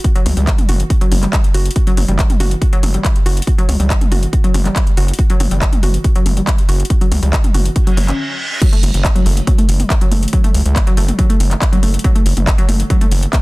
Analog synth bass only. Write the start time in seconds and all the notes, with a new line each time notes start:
0.26 C#2
0.37 C#2
0.69 F#1
1.12 F#1
1.54 F#1
1.97 F#1
2.08 F#1
2.40 F#1
2.83 F#1
3.26 F#1
3.69 C#2
3.80 C#2
4.12 F#1
4.54 F#1
4.97 F#1
5.40 F#1
5.51 F#1
5.83 F#1
6.26 F#1
6.69 F#1
7.12 C#2
7.23 C#2
7.54 F#1
7.97 F#1
8.83 F#1
8.94 F#1
9.26 F#1
9.69 F#1
10.12 F#1
10.54 C#2
10.65 C#2
10.97 F#1
11.40 F#1
11.83 F#1
12.26 F#1
12.37 F#1
12.69 F#1
13.12 F#1